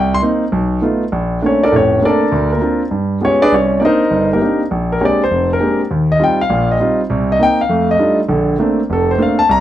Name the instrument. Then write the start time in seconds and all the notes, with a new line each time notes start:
grand piano
Already playing: C2 G5
0.14 C6
0.22 A#3 C4 D#4
0.52 B1
0.82 A3 B3 D#4 F4
1.12 A#1
1.42 A3 A#3 C4 D4
1.46 C#4 C#5
1.63 D4 A4 A#4 D5
1.72 F1 A2
1.76 C#4 C#5
2.02 A3 A#3 C4 D4 A4 A#4 D5
2.32 D2
2.52 A#3 A#4
2.61 C4 D4 F4
2.91 G2
3.21 G#3 B3 C#4 F4 G4 C#5
3.42 D4 G#4 B4 D5
3.52 C2 C#4 C#5
3.80 A#3 C4 D4 D#4 D5
3.85 D#4 A#4 C5 D#5
4.11 G1
4.33 A#3 D#4 G4 A#4
4.42 A#3 C4 D4 D#4
4.71 A#1
4.92 A#4
5.01 G#3 A#3 C4 D4 G4 C#5
5.05 D5
5.24 C5
5.31 F1
5.53 A#4
5.60 G#3 A#3 C4 D4 G4
5.91 D#2
6.12 D#5
6.20 G3 C4 D#4 F4
6.24 G5
6.41 F5
6.50 A#1 A#2
6.71 D#5
6.80 G3 C4 D#4 F4
7.10 C2 C3
7.32 D#5
7.39 A#3 C4 D#4 G5
7.61 F5
7.69 F2 A3
7.91 D#5
7.99 G3 A3 D4 D#4 F4
8.29 A#1 D3
8.59 A3 A#3 C4 D4
8.90 F1 A4
9.11 C5
9.18 A3 A#3 C4 D4
9.22 F5
9.39 A5
9.49 C2 A#5